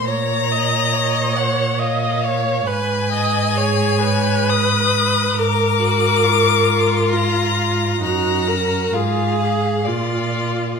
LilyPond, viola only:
\new Staff \with { instrumentName = "Viola" } { \time 3/4 \key bes \minor \tempo 4 = 68 des''8 ees''8 des''4 ees''8 des''8 | \key bes \phrygian ces''8 ees''8 des''8 ces''4. | bes'2 f'4 | ges'8 bes'8 aes'4 f'4 | }